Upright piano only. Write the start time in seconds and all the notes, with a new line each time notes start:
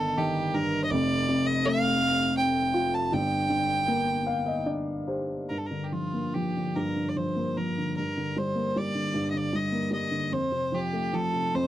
Already playing: G1 G2 D#3 D#4
0.17 D#3
0.54 G2
0.91 F1 F2
1.29 C3
1.65 A3
2.38 C4
2.74 F4
3.12 G1 G2
3.49 D3
3.88 A#3
4.27 F5
4.46 D#5
4.66 D4 D5
5.08 G4 C5
5.50 G2
5.71 D3
5.92 F3
6.14 A#3
6.35 F3
6.56 D3
6.76 G2
6.96 D3
7.16 F3
7.36 A#3
7.57 F3
7.78 D3
7.98 G2
8.17 D3
8.36 G3
8.55 A#3
8.76 G3
8.95 D3
9.14 G2
9.34 D3
9.53 G3
9.72 A#3
9.91 G3
10.11 D3
10.31 F2
10.52 C3
10.72 F3
10.93 A3
11.13 F3
11.33 C3
11.55 F2